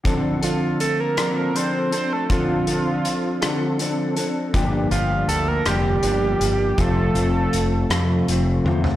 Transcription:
<<
  \new Staff \with { instrumentName = "Analog synth lead" } { \time 6/8 \key d \minor \tempo 4. = 53 r8 f'8 a'16 bes'8. c''8 c''16 a'16 | f'2 r4 | r8 f'8 a'16 bes'16 g'4. | a'2 r4 | }
  \new Staff \with { instrumentName = "Clean electric guitar" } { \time 6/8 \key d \minor <d f c' d' a'>8 <c' d' a'>4 <d f c' d' a'>8 <f c' d' a'>8 <c' d' a'>8 | <d f c' d' a'>8 <c' d' a'>4 <d f c' d' a'>8 <f c' d' a'>8 <c' d' a'>8 | <g, d f bes d' g'>8 <f bes d' g'>4 <g, d f bes d' g'>8 <f bes d' g'>8 <f bes d' g'>8 | <f, c f a c' f'>8 <f a c' f'>4 <f, c f a c' f'>8 <f a c' f'>8 <f a c' f'>8 | }
  \new Staff \with { instrumentName = "Picked electric bass" } { \clef bass \time 6/8 \key d \minor r2. | r2. | g,,8 g,,8 d,8 f,,8 g,,8 g,,8 | f,,8 f,,8 f,,8 f,8 f,,8 e,8 | }
  \new DrumStaff \with { instrumentName = "Drums" } \drummode { \time 6/8 <hh bd>8 hh8 hh8 <hh ss>8 hh8 hh8 | <hh bd>8 hh8 hh8 <hh ss>8 hh8 hh8 | <hh bd>8 hh8 hh8 <hh ss>8 hh8 hh8 | <hh bd>8 hh8 hh8 <hh ss>8 hh8 tommh16 tomfh16 | }
>>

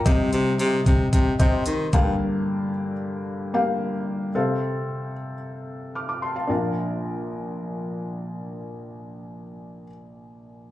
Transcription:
<<
  \new Staff \with { instrumentName = "Felt piano" } { \time 4/4 \key bes \major \tempo 4 = 112 << { <g'' bes''>16 r2. r8. | r1 | r2. <d''' f'''>16 d'''16 <a'' c'''>16 <f'' a''>16~ | <f'' a''>16 r2. r8. |
r1 | } \\ { <c' g' ees''>2 r8 <c' g' ees''>4 <bes g' f''>8~ | <bes g' f''>4. r4 <bes g' f''>4. | <c' a' f''>2 r2 | <d' bes' f''>1~ |
<d' bes' f''>1 | } >> }
  \new Staff \with { instrumentName = "Felt piano" } { \clef bass \time 4/4 \key bes \major <c g>4. r2 <g, d>8~ | <g, d>4 r2. | c4. r2 r8 | bes,,1~ |
bes,,1 | }
  \new Staff \with { instrumentName = "Baritone saxophone" } { \clef bass \time 4/4 \key bes \major c8 c8 c8 c8 c8 c8 ees8 g,8 | r1 | r1 | r1 |
r1 | }
  \new DrumStaff \with { instrumentName = "Drums" } \drummode { \time 4/4 <hh bd>8 hh8 hh8 <hh bd>8 <hh bd>8 <hh bd>8 hh8 <hh bd>8 | r4 r4 r4 r4 | r4 r4 r4 r4 | r4 r4 r4 r4 |
r4 r4 r4 r4 | }
>>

